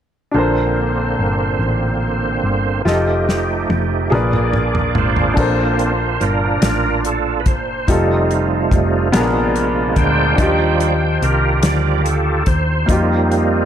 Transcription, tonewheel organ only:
0.34 2.82 D3 soft
0.34 2.82 A#3 soft
0.34 2.82 C4 soft
0.34 2.82 C5 medium
2.85 4.11 F3 medium
2.85 4.11 A3 medium
2.85 4.11 D#4 soft
2.85 4.12 G4 medium
4.10 5.35 A#3 soft
4.10 5.36 D4 soft
4.10 5.36 G#4 medium
4.10 4.17 A4 soft
4.17 5.40 D5 medium
4.96 6.17 F4 soft
4.96 6.26 C5 medium
5.36 5.92 A#3 soft
5.36 5.93 C4 soft
5.36 5.93 D4 medium
6.20 7.42 D4 medium
6.20 7.42 F4 medium
6.20 7.01 A#4 medium
7.06 7.41 A4 medium
7.40 7.47 B4 soft
7.48 7.90 C5 medium
7.87 9.94 C3 medium
7.87 9.93 F3 medium
7.87 9.09 G3 soft
7.87 9.09 A3 soft
7.87 9.10 D#4 medium
7.87 9.96 F4 medium
9.13 10.34 G#3 soft
9.13 10.35 D4 soft
9.97 11.18 F4 medium
9.97 11.26 C5 medium
9.97 11.18 G5 medium
10.37 10.94 F3 soft
10.37 10.93 G3 soft
10.37 10.94 D5 medium
11.23 12.44 F4 medium
11.23 12.44 G4 medium
11.23 11.97 A#4 medium
11.63 12.01 F3 soft
11.63 12.02 G3 soft
11.63 12.02 D5 soft
11.98 12.05 A#4 medium
12.05 12.48 A4 medium
12.47 12.90 C5 medium
12.89 13.65 G3 medium
12.89 13.65 A#3 medium
12.89 13.65 C4 medium
12.89 13.65 D#4 medium
12.89 13.65 F4 medium

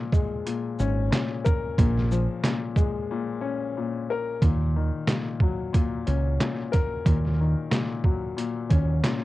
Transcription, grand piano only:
0.00 0.46 A#2 loud
0.00 2.10 F3 medium
0.13 2.75 G#3 medium
0.46 1.09 A#2 medium
0.80 3.40 C#4 medium
1.11 1.77 A#2 medium
1.45 4.09 A#4 medium
1.78 2.42 A#2 medium
2.12 4.42 F3 medium
2.44 3.10 A#2 medium
2.77 4.42 G#3 medium
3.11 3.75 A#2 medium
3.41 4.41 C#4 medium
3.77 4.41 A#2 medium
4.10 4.43 A#4 medium
4.42 5.07 A#2 medium
4.76 7.39 D#3 medium
5.09 5.71 A#2 medium
5.41 8.02 F#3 medium
5.73 6.39 A#2 medium
6.06 8.68 C#4 medium
6.40 7.04 A#2 medium
6.72 9.24 A#4 medium
7.05 7.69 A#2 medium
7.40 9.24 D#3 medium
7.70 8.35 A#2 medium
8.04 9.24 F#3 medium
8.37 9.03 A#2 medium
8.69 9.24 C#4 medium
9.05 9.24 A#2 medium

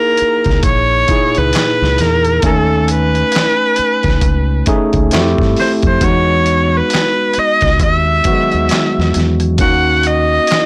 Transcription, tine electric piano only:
0.00 2.44 A#3 medium
0.00 1.10 D#4 medium
0.00 0.10 E4 medium
0.00 0.10 G#4 loud
1.09 2.36 A#2 medium
1.09 2.36 D#4 medium
1.09 2.36 E4 medium
1.09 2.37 G#4 medium
2.43 4.12 A3 medium
2.43 4.13 C#4 medium
2.43 4.13 D#4 medium
2.43 4.13 G#5 medium
4.67 5.11 A3 medium
4.67 5.12 C#4 medium
4.67 5.12 D#4 medium
4.67 5.13 G#4 medium
5.12 5.96 A3 medium
5.12 5.97 C4 medium
5.12 5.97 E4 medium
5.12 5.21 F#4 medium
5.20 6.01 G4 medium
6.02 7.71 G#3 medium
6.02 7.71 B3 medium
6.02 7.71 D#4 medium
6.02 7.72 F#4 medium
8.25 9.53 D#3 medium
8.25 8.33 F#3 medium
8.25 9.53 B3 medium
8.25 9.53 F#4 medium
8.32 9.55 G#3 medium
9.60 10.66 A#3 medium
9.60 10.66 C#4 medium
9.60 10.66 D#4 medium
9.60 10.66 F#4 medium

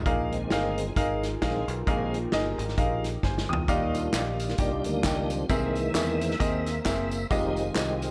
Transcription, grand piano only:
0.06 0.73 A#2 medium
0.06 0.33 D#4 medium
0.06 0.33 G#4 medium
0.06 0.34 A#4 medium
0.06 0.34 F5 loud
0.52 0.79 D#4 medium
0.52 0.79 G#4 medium
0.52 0.79 A#4 medium
0.52 0.79 F5 medium
0.96 1.24 D#4 medium
0.96 1.24 G#4 medium
0.96 1.24 A#4 medium
0.96 1.24 F5 medium
1.42 1.69 D#4 medium
1.42 1.69 G#4 medium
1.42 1.70 A#4 medium
1.42 1.70 F5 medium
1.87 2.55 A#2 medium
1.87 2.15 D#4 medium
1.87 2.15 G#4 medium
1.87 2.15 A#4 medium
1.87 2.15 F5 medium
2.33 2.60 D#4 medium
2.33 2.60 G#4 medium
2.33 2.60 A#4 medium
2.33 2.60 D#5 medium
2.78 3.05 D#4 medium
2.78 3.05 G#4 medium
2.78 3.05 A#4 medium
2.78 3.05 F5 medium
3.23 3.48 C5 soft
3.23 3.48 G#5 medium
3.49 3.92 G5 medium
3.49 3.92 D#6 medium
3.68 4.36 D#3 medium
3.68 3.96 D#4 loud
3.68 3.96 G4 medium
3.68 3.96 D5 medium
3.68 3.96 F5 loud
4.13 4.41 D#4 medium
4.13 4.41 G4 medium
4.13 4.41 D5 medium
4.13 4.41 F5 medium
4.59 4.86 D#4 medium
4.59 4.86 G4 medium
4.59 4.87 D5 medium
4.59 4.87 G5 medium
5.04 5.32 D#4 medium
5.04 5.32 G4 medium
5.04 5.32 D5 medium
5.04 5.32 G5 medium
5.50 6.17 C3 medium
5.50 5.77 C4 loud
5.50 5.77 G#4 medium
5.50 5.77 A#4 medium
5.50 5.77 E5 loud
5.94 6.22 C4 medium
5.94 6.22 G#4 medium
5.94 6.22 A#4 medium
5.94 6.22 E5 medium
6.39 6.67 C4 medium
6.39 6.67 G#4 medium
6.39 6.67 A#4 medium
6.39 6.68 D#5 medium
6.85 7.13 C4 medium
6.85 7.13 G#4 medium
6.85 7.13 A#4 medium
6.85 7.13 E5 medium
7.31 7.58 G#3 loud
7.31 7.58 F4 medium
7.31 7.58 G4 medium
7.31 7.58 D#5 loud
7.76 8.03 G#3 medium
7.76 8.03 F4 medium
7.76 8.04 G4 medium
7.76 8.04 D#5 medium

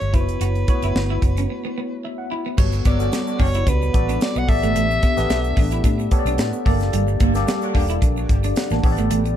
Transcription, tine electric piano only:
0.00 0.15 A3 medium
0.00 0.13 E4 medium
0.00 0.15 G4 medium
0.00 0.15 E5 medium
0.13 0.57 B3 medium
0.13 0.58 E4 medium
0.13 0.58 F#4 medium
0.13 0.21 C5 medium
0.21 0.61 C#5 medium
0.68 0.75 A3 medium
0.68 1.44 E4 medium
0.68 1.44 F#4 medium
0.68 1.44 C#5 medium
0.74 1.47 B3 medium
2.04 2.18 E5 medium
2.18 2.30 F#5 medium
2.31 2.56 B5 medium
2.57 2.86 B3 medium
2.57 2.86 F#4 medium
2.57 2.86 A4 medium
2.57 2.87 C#5 medium
3.00 3.65 B3 medium
3.00 3.65 F#4 medium
3.00 3.65 A4 medium
3.00 3.65 D5 medium
3.94 4.47 B3 medium
3.94 4.48 F#4 medium
3.94 4.47 A4 medium
3.94 4.48 D5 medium
4.48 5.03 B3 medium
4.48 5.03 G4 medium
4.48 5.03 A4 medium
4.48 5.03 D5 medium
5.17 5.82 B3 medium
5.17 5.82 G4 medium
5.17 5.82 A4 medium
5.17 5.83 B4 medium
6.11 6.66 B3 medium
6.11 6.65 G4 medium
6.11 6.65 A4 medium
6.11 6.19 C#5 medium
6.19 6.65 D5 medium
6.66 7.20 A#3 medium
6.66 7.20 G4 medium
6.66 7.20 A4 medium
6.66 7.21 D5 loud
7.35 8.00 A#3 medium
7.35 8.00 G4 medium
7.35 8.00 A4 medium
7.35 8.00 D5 medium
8.45 8.56 D5 medium
8.57 8.71 F#5 medium
8.72 8.97 A5 medium
8.84 9.37 B3 medium
8.84 9.37 G4 medium
8.84 9.37 A4 medium
8.84 8.91 C#5 medium
8.92 9.37 D5 loud

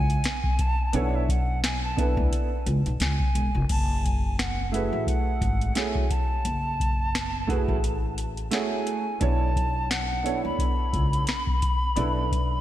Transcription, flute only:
0.00 0.62 G#5 loud
0.61 0.97 A5 loud
0.95 1.17 F#5 medium
1.15 1.32 E5 medium
1.30 1.63 F#5 medium
1.64 1.82 G#5 loud
1.84 2.16 A5 medium
3.01 3.66 G#5 loud
3.71 4.06 A5 medium
4.04 4.40 G#5 medium
4.39 4.74 F#5 medium
4.73 5.09 E5 medium
5.07 5.78 F#5 loud
5.77 6.13 G#5 medium
6.11 8.27 A5 loud
8.52 9.23 G#5 loud
9.21 9.92 A5 loud
9.90 10.44 F#5 loud
10.45 12.61 B5 loud

